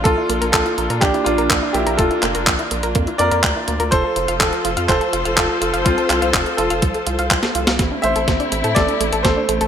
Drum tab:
HH |x-xxxxxxxxxxx-xx|xxxxxxxxxxxxx-xx|x-xxxxxxxxxxx-xx|xxxxxxxxxxxxxxxx|
CP |----x---x---x---|--x-x-------x---|----x---x---x---|--x-x-------x---|
SD |----------------|----------------|----------------|-------------o-o|
BD |o---o---o---o---|o---o---o---o---|o---o---o---o---|o---o---o---o---|

HH |x-xxxxxxxxxxx-xx|
CP |----------------|
SD |o---o---o---o---|
BD |o---o---o---o---|